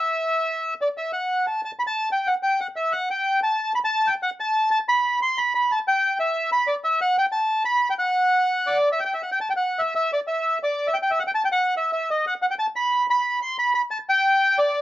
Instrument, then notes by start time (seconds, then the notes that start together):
bandoneon
Already playing: E5
0.81 D5
0.97 E5
1.13 F#5
1.47 A5
1.65 A5
1.79 B5
1.87 A5
2.12 G5
2.27 F#5
2.43 G5
2.60 F#5
2.76 E5
2.92 F#5
3.10 G5
3.43 A5
3.75 B5
3.84 A5
4.07 G5
4.23 F#5
4.40 A5
4.71 A5
4.89 B5
5.22 C6
5.38 B5
5.55 B5
5.72 A5
5.88 G5
6.20 E5
6.52 B5
6.67 D5
6.84 E5
7.01 F#5
7.18 G5
7.32 A5
7.65 B5
7.90 G5
7.99 F#5
8.67 D5
8.92 E5
8.99 G5
9.05 G5
9.14 E5
9.23 F#5
9.32 G5
9.41 A5
9.50 G5
9.56 F#5
9.79 E5
9.95 E5
10.13 D5
10.27 E5
10.63 D5
10.87 E5
10.94 G5
11.02 G5
11.11 E5
11.19 F#5
11.27 G5
11.35 A5
11.45 G5
11.52 F#5
11.77 E5
11.93 E5
12.10 D#5
12.27 F#5
12.42 F#5
12.50 G5
12.59 A5
12.76 B5
13.10 B5
13.42 C6
13.59 B5
13.75 B5
13.91 A5
14.09 G5
14.58 D5